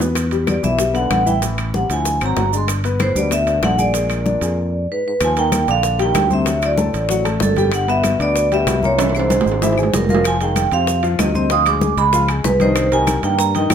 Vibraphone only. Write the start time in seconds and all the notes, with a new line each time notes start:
0.49 D5
0.64 E5
0.95 F#5
1.27 G5
1.75 F#5
1.93 G#5
2.26 A#5
2.57 C6
3.02 C5
3.17 D5
3.33 E5
3.64 F#5
3.80 D5
4.92 B4
5.08 B4
5.24 G#5
5.39 G5
5.71 F5
6.02 G5
6.33 E5
6.66 D5
7.43 A4
7.59 A4
7.74 F#5
7.90 E5
8.22 D5
8.54 E5
8.85 C#5
9.16 C5
9.95 A#4
10.10 A#4
10.27 G#5
10.42 G5
10.73 F5
11.19 D#5
11.35 D#5
11.52 D#6
11.67 D6
11.98 B5
12.45 B4
12.62 C5
12.93 G#5
13.24 G5
13.39 A#5
13.55 G5